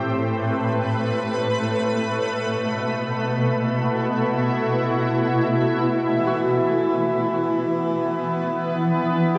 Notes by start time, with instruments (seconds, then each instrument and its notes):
Already playing: ambient pad A2 A3 C4 G4 B4, harp A4
1.85 ambient pad B2
2.72 ambient pad E4
3.78 ambient pad F#4
6.14 harmonium E3 E4, ambient pad E3
6.27 harp F#4
6.77 ambient pad B3
8.32 ambient pad D4
9.35 harp G4